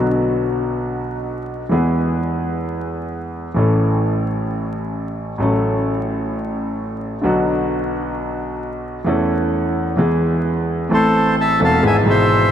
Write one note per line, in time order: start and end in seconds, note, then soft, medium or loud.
0.00 1.62 B1 medium
0.00 1.62 B2 medium
0.00 1.61 D3 medium
0.00 1.62 F#3 soft
0.00 1.62 B3 soft
0.00 1.63 F#4 medium
1.70 3.47 E2 medium
1.70 3.47 E3 medium
1.70 3.46 G#3 soft
1.70 3.47 B3 soft
1.70 3.48 G#4 medium
3.54 5.31 A1 medium
3.54 5.31 A2 medium
3.54 5.30 E3 medium
3.54 5.31 A3 soft
3.54 5.32 C#4 soft
3.54 5.32 A4 medium
5.38 7.15 A1 medium
5.38 7.15 A2 medium
5.38 7.14 F#3 soft
5.38 7.15 A3 soft
5.38 7.15 C#4 soft
5.38 7.16 A4 medium
7.22 8.98 B1 medium
7.22 8.98 B2 medium
7.22 8.97 D3 medium
7.22 8.98 F#3 soft
7.22 8.98 B3 soft
7.22 8.99 F#4 medium
9.04 9.94 E2 medium
9.04 9.06 E3 medium
9.04 9.94 E3 medium
9.04 9.94 A3 soft
9.04 9.94 C#4 soft
9.09 9.95 A4 medium
9.96 10.86 E2 medium
9.96 9.98 E3 medium
9.96 10.87 E3 medium
9.96 10.86 G#3 soft
9.96 10.87 B3 soft
10.01 10.87 G#4 medium
10.89 11.57 A1 medium
10.89 11.57 A2 medium
10.89 11.56 E3 medium
10.89 11.56 A3 soft
10.89 11.57 C4 soft
10.89 11.58 A4 medium
10.94 11.36 A4 medium
10.94 11.36 C5 medium
11.41 11.61 E5 medium
11.41 11.60 A5 medium
11.60 11.80 E1 medium
11.60 11.79 E2 medium
11.60 11.79 E3 medium
11.60 11.80 A3 soft
11.60 11.79 C4 soft
11.60 11.80 A4 medium
11.64 11.84 F5 medium
11.64 11.84 A5 medium
11.83 12.02 G#1 medium
11.83 12.02 G#2 medium
11.83 12.02 E3 medium
11.83 12.02 G#3 medium
11.83 12.02 B3 medium
11.83 12.02 G#4 medium
11.87 11.97 E5 medium
11.87 11.96 G#5 medium
12.03 12.52 G#1 medium
12.03 12.05 G#2 medium
12.03 12.52 G#2 medium
12.03 12.52 B2 soft
12.03 12.52 E3 medium
12.03 12.52 G#3 medium
12.08 12.52 G#4 medium
12.08 12.52 C5 medium
12.08 12.52 E5 medium